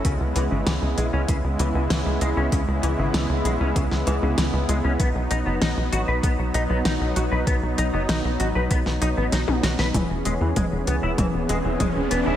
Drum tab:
HH |x-x-x-x-x-x-x-x-|x-x-x-x-x-x-x-x-|x-x-x-x-x-x-x-x-|x-x-x-x-x-x-x-x-|
SD |----o-------o---|----o----o--o---|----o-------o---|----o----o--o-oo|
T1 |----------------|----------------|----------------|-------------o--|
T2 |----------------|----------------|----------------|----------------|
BD |o-------o-------|o-------o-------|o-------o-------|o-------o-------|

HH |x-x-x-x-x-x-x-x-|
SD |----------------|
T1 |----------------|
T2 |o---o---o---o---|
BD |o---o---o---o---|